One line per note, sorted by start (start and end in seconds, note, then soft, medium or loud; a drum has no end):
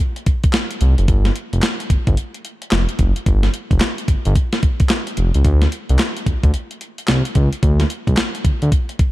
0.16 closed hi-hat soft
0.26 kick medium
0.26 closed hi-hat medium
0.44 kick loud
0.44 closed hi-hat medium
0.53 snare loud
0.53 clap medium
0.53 closed hi-hat medium
0.71 closed hi-hat medium
0.81 0.95 C2 loud
0.81 closed hi-hat medium
0.98 1.06 F#1 medium
0.98 closed hi-hat medium
1.08 1.30 G1 loud
1.08 kick loud
1.08 closed hi-hat medium
1.25 snare medium
1.25 closed hi-hat medium
1.36 closed hi-hat medium
1.53 1.61 F1 medium
1.53 closed hi-hat soft
1.62 snare loud
1.62 clap medium
1.62 closed hi-hat medium
1.80 closed hi-hat medium
1.90 1.97 G1 soft
1.90 kick medium
1.90 closed hi-hat medium
2.07 2.15 G1 medium
2.07 kick loud
2.07 closed hi-hat soft
2.17 closed hi-hat medium
2.34 closed hi-hat soft
2.45 closed hi-hat medium
2.62 closed hi-hat medium
2.71 2.86 F1 medium
2.71 snare loud
2.71 clap medium
2.71 closed hi-hat medium
2.89 closed hi-hat medium
2.99 3.13 F#1 medium
2.99 kick medium
2.99 closed hi-hat medium
3.16 closed hi-hat medium
3.26 3.48 G1 loud
3.26 kick loud
3.26 closed hi-hat medium
3.43 snare medium
3.43 closed hi-hat soft
3.54 closed hi-hat medium
3.71 3.79 F1 medium
3.71 kick medium
3.71 closed hi-hat soft
3.80 snare loud
3.80 clap medium
3.80 closed hi-hat medium
3.98 closed hi-hat medium
4.08 4.15 G1 soft
4.08 kick medium
4.08 closed hi-hat medium
4.25 4.34 G1 medium
4.25 closed hi-hat soft
4.35 kick medium
4.35 closed hi-hat medium
4.53 snare medium
4.53 closed hi-hat soft
4.63 kick medium
4.63 closed hi-hat medium
4.80 kick loud
4.80 closed hi-hat medium
4.89 snare loud
4.89 clap medium
4.89 closed hi-hat medium
5.07 closed hi-hat medium
5.17 5.31 F1 medium
5.17 closed hi-hat medium
5.34 5.43 C#2 medium
5.34 closed hi-hat medium
5.45 5.67 D2 loud
5.45 kick loud
5.45 closed hi-hat medium
5.62 snare medium
5.62 closed hi-hat medium
5.72 closed hi-hat medium
5.89 5.97 C2 loud
5.89 closed hi-hat soft
5.99 snare loud
5.99 clap medium
5.99 closed hi-hat medium
6.17 closed hi-hat medium
6.26 6.33 D2 medium
6.26 kick medium
6.26 closed hi-hat medium
6.44 6.52 D2 medium
6.44 kick loud
6.44 closed hi-hat soft
6.54 closed hi-hat medium
6.71 closed hi-hat soft
6.81 closed hi-hat medium
6.98 closed hi-hat medium
7.08 7.22 C2 medium
7.08 snare loud
7.08 clap medium
7.08 closed hi-hat medium
7.25 closed hi-hat medium
7.35 7.49 C#2 loud
7.35 kick medium
7.35 closed hi-hat medium
7.53 closed hi-hat medium
7.63 7.85 D2 loud
7.63 kick loud
7.63 closed hi-hat medium
7.80 snare medium
7.80 closed hi-hat medium
7.90 closed hi-hat medium
8.07 8.15 C2 medium
8.07 kick medium
8.07 closed hi-hat soft
8.17 snare loud
8.17 clap medium
8.17 closed hi-hat medium
8.35 closed hi-hat medium
8.45 8.52 D2 soft
8.45 kick medium
8.45 closed hi-hat medium
8.62 8.70 D2 medium
8.62 closed hi-hat soft
8.72 kick medium
8.72 closed hi-hat medium
8.89 closed hi-hat soft
8.99 kick loud
8.99 closed hi-hat medium